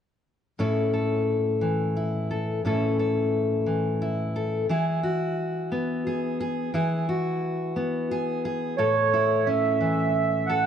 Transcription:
0.59 2.60 A2 medium
0.59 2.60 C#4 soft
0.59 1.96 E4 soft
0.59 0.93 A4 soft
0.93 2.30 A4 soft
1.61 3.66 E3 soft
1.97 2.66 E4 soft
2.31 2.60 A4 soft
2.65 4.65 A2 soft
2.65 4.66 C#4 soft
2.65 4.01 E4 soft
2.65 2.98 A4 medium
2.99 4.35 A4 soft
3.66 4.69 E3 soft
4.02 4.70 E4 soft
4.36 4.65 A4 soft
4.69 6.73 E3 medium
4.69 6.74 E4 soft
4.69 5.03 G#4 medium
5.03 6.06 F#4 soft
5.72 6.70 B3 soft
6.07 6.39 G#4 soft
6.40 6.70 G#4 medium
6.74 9.79 E3 medium
6.74 8.75 E4 soft
6.74 7.08 G#4 medium
7.09 8.11 F#4 soft
7.76 8.74 B3 soft
8.11 8.44 G#4 medium
8.45 8.75 G#4 medium
8.77 10.66 A2 medium
8.77 10.48 A4 soft
8.77 9.48 C#5 medium
9.14 10.66 E4 soft
9.45 10.66 C#4 soft
9.45 10.51 E5 medium
9.81 10.66 E3 soft
10.46 10.66 A4 medium
10.46 10.66 F#5 medium

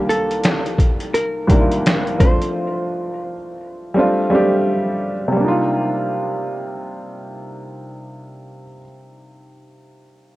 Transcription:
0.00 0.76 C2 medium
0.00 0.76 D#3 medium
0.00 0.77 G3 medium
0.00 0.77 A#3 medium
0.00 0.78 D4 medium
0.00 0.78 F4 medium
0.09 1.14 A4 loud
0.09 closed hi-hat medium
0.31 closed hi-hat soft
0.43 finger snap medium
0.43 snare loud
0.43 closed hi-hat medium
0.66 closed hi-hat soft
0.78 kick medium
0.78 closed hi-hat medium
1.00 closed hi-hat soft
1.14 2.20 A#4 loud
1.14 closed hi-hat medium
1.47 2.19 C2 medium
1.47 2.20 D#3 medium
1.47 2.20 G3 medium
1.47 2.20 A#3 medium
1.47 kick medium
1.47 closed hi-hat medium
1.51 2.20 D4 medium
1.51 1.59 E4 medium
1.59 2.22 F4 medium
1.71 closed hi-hat soft
1.86 finger snap medium
1.86 snare loud
1.86 closed hi-hat medium
2.07 closed hi-hat soft
2.18 3.33 F3 medium
2.18 3.34 A3 medium
2.18 3.35 C4 medium
2.18 3.35 D4 medium
2.18 3.12 C5 loud
2.18 kick loud
2.18 closed hi-hat medium
2.23 3.36 F4 medium
2.41 closed hi-hat soft
3.12 3.57 A#4 loud
3.94 4.25 G3 medium
3.94 4.26 A3 medium
3.94 4.26 C4 medium
3.94 4.27 D4 medium
3.99 4.27 F4 loud
4.30 5.10 G3 medium
4.30 5.10 A3 medium
4.30 5.11 C4 medium
4.30 5.12 D4 medium
4.35 5.12 G4 loud
5.28 8.64 C3 medium
5.32 8.68 G3 medium
5.32 8.72 A#3 medium
5.40 8.76 D4 medium
5.44 8.80 D#4 medium
5.44 8.84 F4 loud

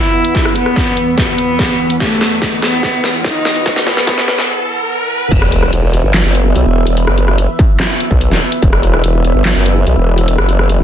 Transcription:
0.00 5.27 E2 medium
0.00 5.27 E3 medium
0.00 4.49 B3 medium
0.00 5.27 B3 medium
0.00 0.47 E4 loud
0.00 4.49 B4 medium
0.00 5.27 B4 medium
0.00 4.49 F#5 medium
0.00 4.49 E6 medium
0.00 riser medium
0.25 closed hi-hat medium
0.35 kick loud
0.35 snare medium
0.35 closed hi-hat medium
0.45 cross-stick medium
0.56 1.09 B3 loud
0.56 closed hi-hat medium
0.66 cross-stick soft
0.76 kick loud
0.76 snare medium
0.76 closed hi-hat medium
0.97 closed hi-hat medium
1.18 1.92 B3 loud
1.18 kick medium
1.18 snare medium
1.18 closed hi-hat medium
1.38 closed hi-hat medium
1.59 kick loud
1.59 snare medium
1.59 closed hi-hat medium
1.90 closed hi-hat medium
2.00 2.54 A3 loud
2.00 kick medium
2.00 snare medium
2.00 closed hi-hat medium
2.21 snare medium
2.21 closed hi-hat soft
2.42 kick loud
2.42 snare medium
2.42 closed hi-hat medium
2.62 3.16 B3 loud
2.62 snare medium
2.62 closed hi-hat medium
2.83 kick loud
2.83 snare medium
2.83 closed hi-hat medium
3.04 snare medium
3.04 closed hi-hat medium
3.24 3.78 D#4 medium
3.24 kick loud
3.24 snare medium
3.24 closed hi-hat medium
3.45 snare medium
3.56 closed hi-hat medium
3.66 kick loud
3.66 snare loud
3.66 closed hi-hat medium
3.76 snare medium
3.86 4.40 B3 loud
3.86 snare medium
3.86 closed hi-hat soft
3.97 snare medium
4.07 kick loud
4.07 snare medium
4.07 closed hi-hat medium
4.18 snare medium
4.28 snare loud
4.28 closed hi-hat medium
4.38 snare medium
5.31 5.71 E1 loud
5.31 10.84 E3 medium
5.31 10.84 B3 medium
5.31 10.84 B4 medium
5.31 10.84 E5 medium
5.31 kick loud
5.31 closed hi-hat medium
5.31 crash loud
5.31 sub drop medium
5.42 cross-stick medium
5.52 closed hi-hat medium
5.63 cross-stick medium
5.73 6.02 E1 loud
5.73 closed hi-hat medium
5.93 closed hi-hat medium
6.04 6.23 G1 loud
6.14 snare loud
6.14 clap medium
6.14 closed hi-hat medium
6.25 6.54 F#1 medium
6.35 closed hi-hat medium
6.56 6.64 B1 loud
6.56 closed hi-hat medium
6.66 7.06 E1 loud
6.87 closed hi-hat medium
6.97 closed hi-hat medium
7.07 7.47 F#1 loud
7.07 cross-stick medium
7.18 closed hi-hat medium
7.28 cross-stick medium
7.38 closed hi-hat medium
7.59 kick loud
7.59 closed hi-hat medium
7.80 snare loud
7.80 clap medium
7.80 closed hi-hat medium
8.00 closed hi-hat medium
8.11 8.30 B1 medium
8.11 kick medium
8.21 closed hi-hat medium
8.31 8.40 E1 loud
8.31 snare soft
8.52 closed hi-hat medium
8.62 9.02 E1 medium
8.62 kick loud
8.62 closed hi-hat medium
8.73 cross-stick medium
8.83 closed hi-hat medium
8.94 cross-stick medium
9.04 9.33 E1 loud
9.04 closed hi-hat medium
9.25 closed hi-hat medium
9.35 9.54 G1 loud
9.45 snare loud
9.45 clap medium
9.45 closed hi-hat medium
9.56 9.85 F#1 loud
9.66 closed hi-hat medium
9.87 9.95 B1 loud
9.87 closed hi-hat medium
9.97 10.37 E1 loud
10.18 closed hi-hat medium
10.28 closed hi-hat medium
10.38 10.78 F#1 loud
10.38 cross-stick medium
10.49 closed hi-hat soft
10.59 cross-stick medium
10.69 closed hi-hat medium
10.80 10.84 E1 loud

